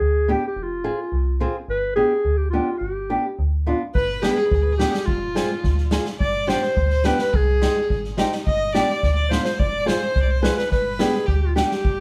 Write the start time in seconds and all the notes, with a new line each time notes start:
Already playing: G#4
0.01 D2
0.28 B3 D4 G4
0.47 G4
0.56 F1
0.63 F4
0.84 C4 F4 G#4
1.12 C2
1.40 C4 F4 G#4
1.68 G1 B4
1.96 B3 D4 G4 G#4
2.25 D2
2.37 G4
2.50 B3 D4 F4 G4
2.78 G1 G4
3.10 B3 D4 G4
3.39 D2
3.66 B3 D4 F4
3.95 G1 B4, kick
4.22 B3 D4 G4 G#4, snare
4.30 B4
4.38 G#4
4.45 B4
4.52 D2 G#4, kick
4.62 B4
4.72 G#4
4.78 B3 D4 G4, snare
4.91 G4, snare
5.06 F1 F4, kick
5.35 C4 F4 G#4, snare
5.64 D2, kick, snare
5.78 snare
5.91 C4 F4 G#4, snare
6.05 snare
6.19 G1 D5, kick
6.47 B3 D4 G4 C5, snare
6.54 D5
6.63 C5, snare
6.77 D2, kick
6.89 C5, snare
7.04 B3 D4 G4 B4, snare
7.18 B4, snare
7.33 C2 G#4, kick
7.61 C4 D#4 G4, snare
7.90 G#1, kick
8.04 snare
8.17 C4 D#4 G4, snare
8.32 snare
8.46 G1 D#5, kick
8.73 B3 D4 G4 D5, snare
8.89 snare
9.03 D2, kick, snare
9.15 D5
9.29 B3 D4 F4 C5, snare
9.45 C5, snare
9.59 F1 D5, kick
9.86 C4 F4 G#4 C5, snare
10.16 C2, kick
10.22 D5
10.31 C5
10.42 C4 F4 G#4 B4, snare
10.57 B4, snare
10.70 G1 B4, kick, snare
10.99 B3 D4 G4 G#4, snare
11.15 snare
11.26 D2 G4, kick
11.42 F4
11.55 B3 D4 G4, snare
11.71 snare
11.85 G1, kick